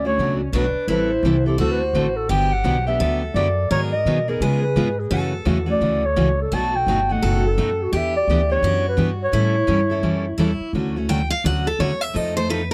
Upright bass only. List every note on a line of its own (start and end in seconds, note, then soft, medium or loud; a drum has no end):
0.00 0.17 D2 medium
0.18 0.52 C#2 medium
0.53 0.73 B1 medium
0.74 muted upright bass stroke soft
0.88 1.22 A1 medium
1.23 1.57 C2 medium
1.58 1.93 D2 medium
1.93 2.28 A1 medium
2.29 2.63 G1 medium
2.65 2.99 B1 loud
3.00 3.34 D2 medium
3.34 3.69 F#2 medium
3.71 4.05 G#2 medium
4.05 4.40 B2 medium
4.41 4.75 C#3 medium
4.76 5.10 G#2 medium
5.11 5.45 F#2 medium
5.46 5.80 E2 medium
5.81 6.15 D2 medium
6.16 6.51 C#2 medium
6.52 6.86 B1 medium
6.87 7.21 G1 medium
7.22 7.57 F#1 medium
7.57 7.92 F#2 medium
7.92 8.27 E2 medium
8.27 8.62 D2 medium
8.62 8.97 F#2 medium
8.97 9.32 G2 medium
9.33 9.67 A2 medium
9.68 10.02 G2 medium
10.03 10.37 F#2 medium
10.38 10.59 E2 medium
10.60 muted upright bass stroke soft
10.73 11.30 D2 medium
11.44 11.74 D2 medium
11.79 12.09 E2 medium
12.15 12.71 F2 medium